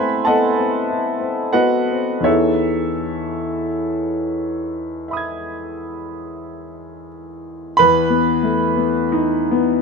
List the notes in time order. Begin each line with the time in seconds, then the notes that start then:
Already playing: A3 B3 C4 E4 B4 C5 E5 F#5 G#5 A5 B5 C6
0.25 B3 A4 D#5 F#5 A5
0.57 C4
0.89 E4
1.20 C4
1.53 B3 F#4 B4 D#5 F#5
1.90 C4
2.21 E2 E3 B3 D#4 G#4 C#5 E5
2.25 A4
5.08 E5 B5
5.13 D#6 G#6
7.77 E2 B4 B5
8.10 B3
8.43 A3
8.76 B3
9.12 D#4
9.51 B3